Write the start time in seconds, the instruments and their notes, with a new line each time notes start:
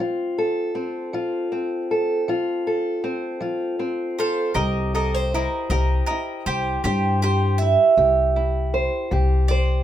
Already playing: steel-string acoustic guitar C4
0.00 steel-string acoustic guitar F3 F4
0.38 steel-string acoustic guitar A4
0.75 steel-string acoustic guitar C4
1.13 steel-string acoustic guitar F3 F4
1.52 steel-string acoustic guitar C4
1.91 steel-string acoustic guitar A4
2.28 steel-string acoustic guitar F3 F4
2.67 steel-string acoustic guitar A4
3.04 steel-string acoustic guitar C4
3.40 steel-string acoustic guitar F3 F4
3.79 steel-string acoustic guitar C4
4.19 steel-string acoustic guitar A4, mandolin C5 F5
4.54 upright bass C2, steel-string acoustic guitar C3 G4, mandolin A#4 D#5
4.94 steel-string acoustic guitar A4, mandolin A#4 D#5
5.14 steel-string acoustic guitar C5
5.34 steel-string acoustic guitar E4, mandolin A#4 D#5
5.70 upright bass C2, steel-string acoustic guitar C3 G4, mandolin A#4 D#5
6.06 mandolin A#4 D#5
6.11 steel-string acoustic guitar E4
6.46 upright bass C2, mandolin G4 C5, steel-string acoustic guitar G4
6.84 upright bass G2, steel-string acoustic guitar C3 G4, mandolin G4 C5
7.22 mandolin G4 C5, steel-string acoustic guitar G4
7.58 steel-string acoustic guitar E4, mandolin E5
7.97 upright bass C2, steel-string acoustic guitar C3 G4
8.36 steel-string acoustic guitar E4
8.74 steel-string acoustic guitar C5
9.11 upright bass C2, steel-string acoustic guitar C3 G4
9.48 steel-string acoustic guitar C5, mandolin D5